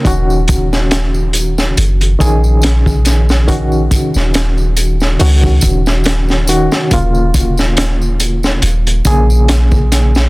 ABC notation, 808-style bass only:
X:1
M:4/4
L:1/16
Q:"Swing 16ths" 1/4=70
K:Ebm
V:1 name="808-style bass" clef=bass
E,,,8 G,,,2 B,,,6- | B,,,2 z E,,,4- E,,, D,,2 E,,,4- E,,, z | E,,,8 E,,,2 B,,,6 |]